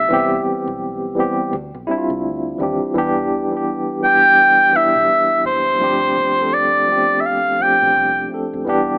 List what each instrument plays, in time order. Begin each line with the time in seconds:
Already playing: tine electric piano F3 A3 B3 D4 F4 G4, oboe E5
0.08 fingered electric bass C2, tine electric piano E3 G3 B3 C4
0.13 tine electric piano G4
0.46 muted fingered electric bass stroke
0.67 fingered electric bass B1
1.15 tine electric piano E3 G3 B3 C4
1.20 tine electric piano G4
1.53 fingered electric bass D2
1.74 fingered electric bass B1
1.87 tine electric piano G3 C4 D4 E4
1.91 tine electric piano E4
1.98 tine electric piano F4
2.10 fingered electric bass C2
2.24 fingered electric bass D2
2.58 fingered electric bass D#2, tine electric piano E3 G3 C4 D4
2.63 tine electric piano G4
2.94 fingered electric bass E2, tine electric piano E3 G3 B3 D4
2.98 tine electric piano G4
3.51 tine electric piano E3 G3 B3 D4
3.57 tine electric piano G4
4.00 tine electric piano E3 G3 B3, oboe G5
4.05 tine electric piano D4 G4
4.72 tine electric piano E3 G3 B3 D4, oboe E5, muted fingered electric bass stroke
4.77 tine electric piano E4
4.96 fingered electric bass B1
5.45 fingered electric bass F#1, oboe C5
5.79 fingered electric bass G1, tine electric piano F3 A3 C4 D4
5.84 tine electric piano G4
6.17 fingered electric bass G1
6.37 tine electric piano F3 A3 C4 D4
6.42 tine electric piano A4
6.54 oboe D5
6.87 tine electric piano F3 A3 B3 D4
6.92 tine electric piano G4
6.96 tine electric piano C4
7.21 oboe E5
7.26 oboe F5
7.59 tine electric piano F3 A3 C4 D4, oboe G5, muted fingered electric bass stroke
7.65 tine electric piano G4
7.82 fingered electric bass B1
7.96 fingered electric bass C2
8.29 tine electric piano F3 A3 C4 D4
8.34 tine electric piano A4
8.53 fingered electric bass D#1
8.65 fingered electric bass E1, tine electric piano E3 G3 B3
8.69 tine electric piano D4 G4